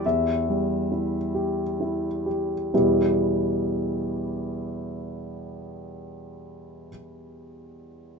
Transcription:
<<
  \new Staff \with { instrumentName = "Grand piano" } { \time 6/8 \key e \minor \tempo 4. = 44 <e, g'>8 g8 e'8 g'8 e'8 g'8 | r2. | r2. | }
  \new Staff \with { instrumentName = "Grand piano" } { \time 6/8 \key e \minor e''2~ e''8 r8 | <e, b, g b e' g'>2.~ | <e, b, g b e' g'>2. | }
>>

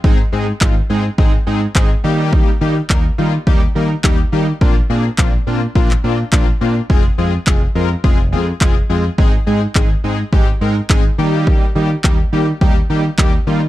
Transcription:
<<
  \new Staff \with { instrumentName = "Analog polysynth" } { \time 4/4 \key ees \major \tempo 4 = 105 <aes c' ees' aes'>16 r16 <aes c' ees' aes'>16 r16 <aes c' ees' f'>16 r16 <aes c' ees' aes'>16 r16 <aes c' ees' aes'>16 r16 <aes c' ees' aes'>16 r16 <aes c' ees' aes'>16 r16 <g bes ees' g'>8~ | <g bes ees' g'>8 <g bes ees' g'>16 r16 <g bes ees' bes'>16 r16 <g bes ees' f'>16 r16 <g bes ees' g'>16 r16 <g bes ees' bes'>16 r16 <g bes ees' g'>16 r16 <g bes ees' g'>16 r16 | <bes c' d' f'>16 r16 <bes c' d' aes'>16 r16 <bes c' d' f'>16 r16 <bes c' d' f'>16 r16 <bes c' d' f'>16 r16 <bes c' d' f'>16 r16 <bes c' d' f'>16 r16 <bes c' d' f'>16 r16 | <aes c' f' aes'>16 r16 <aes c' f' aes'>16 r16 <aes c' f' aes'>16 r16 <aes c' f' bes'>16 r16 <aes c' f' aes'>16 r16 <aes c' f' aes'>16 r16 <aes c' f' aes'>16 r16 <aes c' f' aes'>16 r16 |
<aes c' ees' aes'>16 r16 <aes c' ees' aes'>16 r16 <aes c' ees' aes'>16 r16 <aes c' ees' aes'>16 r16 <aes c' ees' g'>16 r16 <aes c' ees' bes'>16 r16 <aes c' ees' aes'>16 r16 <g bes ees' g'>8~ | <g bes ees' g'>8 <g bes ees' g'>16 r16 <g bes ees' g'>16 r16 <g bes ees' g'>16 r16 <g bes ees' g'>16 r16 <g bes ees' g'>16 r16 <g bes ees' g'>16 r16 <g bes ees' f'>16 r16 | }
  \new Staff \with { instrumentName = "Fingered electric bass" } { \clef bass \time 4/4 \key ees \major aes,,8 aes,8 aes,,8 aes,8 aes,,8 aes,8 aes,,8 ees8~ | ees8 ees8 ees,8 ees8 ees,8 ees8 ees,8 ees8 | bes,,8 bes,8 bes,,8 bes,8 bes,,8 bes,8 bes,,8 bes,8 | f,,8 f,8 f,,8 f,8 f,,8 f,8 f,,8 f,8 |
aes,,8 aes,8 aes,,8 aes,8 aes,,8 aes,8 aes,,8 ees8~ | ees8 ees8 ees,8 ees8 ees,8 ees8 ees,8 ees8 | }
  \new DrumStaff \with { instrumentName = "Drums" } \drummode { \time 4/4 bd4 <hc bd>4 bd4 <hc bd>4 | bd4 <hc bd>4 bd4 <hc bd>4 | bd4 <hc bd>4 bd16 hc8. <hc bd>4 | bd4 <hc bd>4 bd4 <hc bd>4 |
bd4 <hc bd>4 bd4 <hc bd>4 | bd4 <hc bd>4 bd4 <hc bd>4 | }
>>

